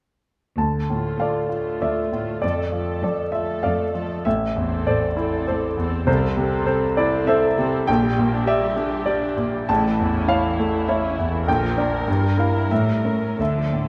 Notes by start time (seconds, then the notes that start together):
0.57 D2 A5
0.89 A2 A3 F4
1.20 D2 A4 D5 F5
1.49 A3 F4
1.82 D2 A4 D5 E5
2.12 A2 A3 F4
2.42 F2 A3 A4 D5
2.72 F3 A3 A4
3.03 F2 A4 D5
3.32 A3 F4 A4 E5
3.63 F2 A4 D5 F5
3.95 F3 A3 A4
4.25 A1 A2 E5
4.55 E2 C4 A4
4.87 A2 A4 C5 D5
5.17 C4 E4 A4
5.47 A2 A4 C5
5.77 E2 C4 A4
6.07 C2 C3 C4 A4 C5
6.37 C3 C4 A4
6.66 C3 A4 C5
6.97 C4 E4 A4 D5
7.27 C3 A4 C5 E5
7.57 C3 C4 A4
7.87 A#1 A#2 D3 G4 G5
8.02 G3
8.18 A#2 A#3
8.32 D4
8.46 A#3 G4 D5 E5
8.62 G3
8.76 D3 D4
8.90 G3
9.06 A#3 G4 D5
9.21 D4
9.36 A#2 A#3
9.53 G3
9.69 A1 A2 C#3 E4 A5
9.85 E3
10.00 E2 A3
10.15 C#4
10.28 A3 E4 C#5 F5
10.46 E3
10.59 C#3 A3
10.74 E3
10.88 A3 E4 C#5 E5
11.05 C#4
11.18 E2 A3
11.33 E3
11.47 A#1 A#2 D3 A#4 G5
11.63 F3
11.77 A#3 D4 D5
11.94 D4
12.08 G2 E3
12.23 G3
12.38 A#3 E4 A#4 F5
12.55 E4
12.70 A2 E3 E5
12.88 G3
13.03 A3 C#4 A#4
13.21 C#4
13.38 D2 D3 A4 E5
13.56 F3
13.73 A2 A3